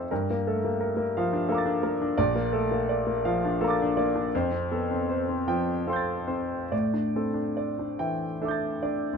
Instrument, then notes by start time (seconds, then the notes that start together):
grand piano
Already playing: F3 B3 C4 A4 C5 E5
0.11 G2 A#4
0.30 A#3
0.47 A3 A4
0.65 A#3
0.81 A#4
0.97 A#3
1.17 F3 F5
1.33 D4
1.49 A#3 A4 F5 A#5
1.54 D6 A6
1.66 D4
1.83 A#3 A#4
2.02 D4
2.18 A#1 D5
2.35 A#3
2.52 A3 A4
2.71 A#3
2.89 D5
3.07 A#3
3.25 F3 F5
3.45 D4
3.61 A#3 A4 F5 A#5
3.68 D6 A6
3.82 D4
3.97 A#3 D5
4.16 D4
4.35 F2 C5
4.52 C4
4.71 B3 A4
4.91 C4
5.09 C5
5.29 C4
5.48 F3 G5
5.87 C4 A4 F5 C6
5.93 G6 A6
6.27 C4 C5
6.71 A2 D5
6.94 D4
7.15 C4 A4
7.34 D4
7.57 D5
7.79 D4
7.99 E3 G5
8.42 D4 A4 E5 D6
8.48 G6 A6
8.83 D4 D5
9.13 D2